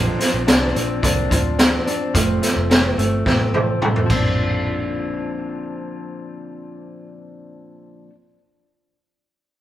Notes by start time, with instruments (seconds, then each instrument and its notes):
Already playing: picked electric bass A#1, steel-string acoustic guitar A#2 D3 F3 C4 D4, clean electric guitar A#3
0.20 steel-string acoustic guitar F3 C4 D4, snare, closed hi-hat
0.34 picked electric bass A#1
0.48 picked electric bass C2, steel-string acoustic guitar D3 F3 C4 D4, snare, closed hi-hat
0.75 picked electric bass A#1, steel-string acoustic guitar F3 C4 D4, closed hi-hat
1.03 picked electric bass C2, steel-string acoustic guitar A#2 D3 F3 C4 D4, kick, closed hi-hat
1.31 picked electric bass D2, steel-string acoustic guitar F3 C4 D4, kick, closed hi-hat
1.59 steel-string acoustic guitar D3 F3 C4 D4, snare, closed hi-hat
1.87 steel-string acoustic guitar F3 C4 D4, closed hi-hat
2.14 picked electric bass F1, steel-string acoustic guitar F2 C3 F3 A3 C4, kick, closed hi-hat
2.42 steel-string acoustic guitar F3 A3 C4, snare, closed hi-hat
2.56 picked electric bass F1
2.70 steel-string acoustic guitar C3 F3 A3 C4, snare, closed hi-hat
2.97 picked electric bass G1, steel-string acoustic guitar F3 A3 C4, closed hi-hat
3.26 picked electric bass A1, steel-string acoustic guitar F2 C3 F3 A3 C4, kick, snare
3.54 picked electric bass A1, steel-string acoustic guitar F3 A3 C4, high tom
3.81 steel-string acoustic guitar C3 F3 A3 C4, mid tom
3.96 mid tom
4.06 picked electric bass A#1, steel-string acoustic guitar A#2 D3, clean electric guitar F3, kick, crash
4.11 steel-string acoustic guitar F3 C4
4.15 steel-string acoustic guitar D4